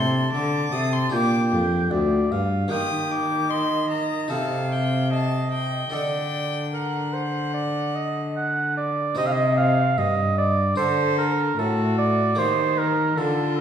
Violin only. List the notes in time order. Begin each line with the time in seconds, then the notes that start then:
Already playing: C6
0.33 D6
0.72 D#6
0.93 C6
1.13 D6
2.71 D#6
3.11 D6
3.50 C6
3.90 A#5
4.30 A5
4.72 G5
5.12 A5
5.52 G5
5.92 G5
6.74 F#5
10.78 A4
11.59 F#4
12.39 D#4
13.18 F4